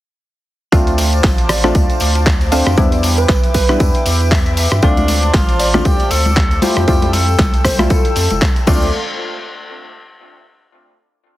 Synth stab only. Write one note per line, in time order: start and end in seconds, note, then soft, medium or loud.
0.72 1.60 A3 loud
0.72 1.60 C4 medium
0.72 1.60 D4 medium
0.72 1.60 F4 loud
1.64 2.49 A3 medium
1.64 2.49 C4 medium
1.64 2.49 D4 medium
1.64 2.49 F4 loud
2.52 2.75 A3 medium
2.52 2.75 C4 medium
2.52 2.75 D4 medium
2.52 2.75 F4 medium
2.77 3.66 G3 medium
2.77 3.66 B3 medium
2.77 3.66 D4 medium
2.77 3.66 E4 loud
3.69 4.80 G3 medium
3.69 4.80 B3 medium
3.69 4.80 D4 medium
3.69 4.80 E4 medium
4.83 5.71 A3 loud
4.83 5.71 C4 medium
4.83 5.71 D4 medium
4.83 5.71 F4 loud
5.74 6.59 A3 medium
5.74 6.59 C4 medium
5.74 6.60 D4 medium
5.74 6.60 F4 loud
6.62 6.85 G3 medium
6.62 6.85 A3 medium
6.62 6.85 E4 medium
6.62 6.85 F4 medium
6.88 7.76 G3 medium
6.88 7.76 A3 medium
6.88 7.76 E4 medium
6.88 7.76 F4 loud
7.79 8.65 G3 medium
7.79 8.65 A3 medium
7.79 8.65 E4 medium
7.79 8.65 F4 medium
8.67 8.87 A3 medium
8.67 8.87 C4 medium
8.67 8.87 D4 medium
8.67 8.87 F4 medium